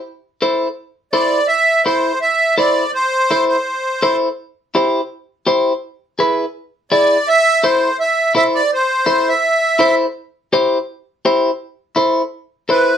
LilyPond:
<<
  \new Staff \with { instrumentName = "Accordion" } { \time 4/4 \key a \minor \tempo 4 = 166 r2. d''4 | e''4 c''4 e''4 d''4 | c''4. c''2 r8 | r1 |
r2. d''4 | e''4 c''4 e''4 e''8 d''8 | c''4. e''2 r8 | r1 |
r2. b'4 | }
  \new Staff \with { instrumentName = "Clean electric guitar" } { \time 4/4 \key a \minor r4 <e' a' c''>8 r4. <e' a' c''>8 r8 | r4 <e' a' c''>8 r4. <e' a' c''>8 r8 | r4 <e' a' c''>8 r4. <e' a' c''>8 r8 | r4 <e' g' c''>8 r4. <e' g' c''>8 r8 |
r4 <e' gis' b'>8 r4. <e' gis' d''>8 r8 | r4 <e' a' c''>8 r4. <e' a' c''>8 r8 | r4 <e' a' c''>8 r4. <e' a' c''>8 r8 | r4 <e' g' c''>8 r4. <e' g' c''>8 r8 |
r4 <e' a' c''>8 r4. <e' a' c''>8 r8 | }
>>